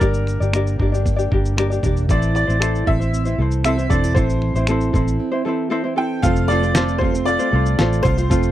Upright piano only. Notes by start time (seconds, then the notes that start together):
0.00 A#4
2.10 D5
2.36 D5
2.87 E5
3.65 E5
3.90 D5
4.14 C5
5.98 G5
6.22 F5
6.48 D5
6.98 C5
7.25 D5
8.03 C5